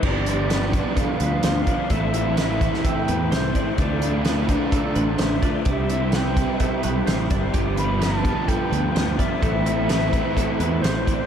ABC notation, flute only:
X:1
M:4/4
L:1/8
Q:1/4=128
K:Gmix
V:1 name="Flute"
d3 d f2 f2 | e2 e2 g2 c2 | d2 z d3 e2 | e2 g2 e3 z |
z b a2 g3 e- | e6 c2 |]